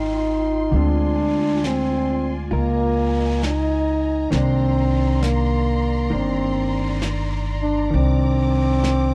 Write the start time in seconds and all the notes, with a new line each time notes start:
Already playing: G#1 C4 D#4 F4 D#5 G5 C6
0.71 D2 D3 G#3 C4, brush sweep
0.76 D4 F4 D5 G#5
1.64 C4, snare, hi-hat pedal
2.51 C#2 F4 A#4 D#5 G#5 A#5, brush sweep
2.56 A#3
3.43 D#4, snare, hi-hat pedal
4.31 C2 D#3 A#3 C4, brush sweep, snare
4.35 D4 D5 C6
5.23 A#3, snare, hi-hat pedal
6.10 G1 D#3 A#3 D4, brush sweep
6.15 C4
7.02 snare, hi-hat pedal
7.62 D4
7.91 C2 D#3 D6, brush sweep
7.95 C4 D4
8.83 snare, hi-hat pedal